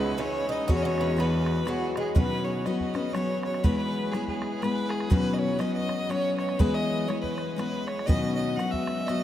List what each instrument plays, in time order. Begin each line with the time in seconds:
Already playing: cello C#2, steel-string acoustic guitar G#3 C#4 D#4 G#4, bouzouki B3, fiddle B4
0.17 steel-string acoustic guitar G#3 C#4 D#4 G#4, bouzouki C#4, fiddle C#5, bodhran
0.49 bouzouki D#4, fiddle D#5
0.67 cello E2, steel-string acoustic guitar E3 B3 F#4 G#4, bouzouki C#4, bodhran
0.73 fiddle C#5
0.82 bouzouki C#4, fiddle C#5 D#5
0.98 bouzouki C#4, fiddle B4 C#5, bodhran
1.16 steel-string acoustic guitar E3 B3 F#4 G#4, bouzouki B3, fiddle B4, bodhran
1.46 bodhran
1.65 steel-string acoustic guitar E3 B3 F#4 G#4, bouzouki F#3, fiddle F#4, bodhran
1.96 bouzouki G#3, fiddle G#4, bodhran
2.15 steel-string acoustic guitar B2 D#3 F#3 B3 C#4 F#4, fiddle B4, bodhran
2.44 fiddle C#5
2.66 steel-string acoustic guitar F#3 B3 C#4 F#4, fiddle D#5, bodhran
2.81 fiddle D#5, bodhran
2.94 steel-string acoustic guitar F#3 B3 C#4 F#4, bodhran
3.13 steel-string acoustic guitar F#3 B3 C#4 F#4, fiddle C#5, bodhran
3.43 fiddle C#5, bodhran
3.54 bodhran
3.63 steel-string acoustic guitar E3 G#3 B3 E4 G#4, fiddle B4, bodhran
3.77 fiddle B4
4.11 steel-string acoustic guitar G#3 B3 E4, fiddle G#4, bodhran
4.16 steel-string acoustic guitar G#4
4.27 fiddle G#4, bodhran
4.42 bodhran
4.62 steel-string acoustic guitar G#3 B3 E4 G#4, fiddle B4, bodhran
4.89 fiddle G#4, bodhran
5.00 bodhran
5.10 steel-string acoustic guitar B2 D#3 F#3 B3 C#4 F#4, fiddle B4, bodhran
5.33 fiddle D#5
5.38 fiddle C#5
5.59 steel-string acoustic guitar F#3 B3 C#4 F#4, fiddle D#5, bodhran
5.74 fiddle D#5
5.89 bodhran
6.09 steel-string acoustic guitar F#3 B3 C#4 F#4, fiddle C#5, bodhran
6.38 fiddle C#5, bodhran
6.49 bodhran
6.59 steel-string acoustic guitar E3 G#3 B3 E4 G#4, fiddle B4, bodhran
6.74 fiddle D#5
7.08 steel-string acoustic guitar G#3 B3 E4 G#4, fiddle C#5, bodhran
7.21 fiddle B4, bodhran
7.38 bodhran
7.56 steel-string acoustic guitar G#3 B3 E4 G#4, fiddle B4, bodhran
7.87 fiddle C#5, bodhran
7.99 bodhran
8.06 steel-string acoustic guitar B2 D#3 F#3 B3 C#4 F#4, fiddle D#5, bodhran
8.35 fiddle D#5
8.56 steel-string acoustic guitar F#3 B3 C#4, fiddle F#5, bodhran
8.60 steel-string acoustic guitar F#4
8.71 fiddle E5, bodhran
8.87 bodhran
9.06 steel-string acoustic guitar F#3 B3 C#4 F#4, fiddle D#5, bodhran